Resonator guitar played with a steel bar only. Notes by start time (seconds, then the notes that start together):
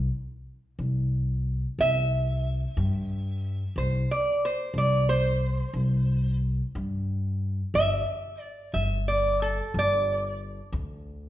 1.81 E5
3.78 C5
4.11 D5
4.45 C5
4.78 D5
5.09 C5
7.75 E5
8.41 D5
8.74 E5
9.08 D5
9.42 A4
9.79 D5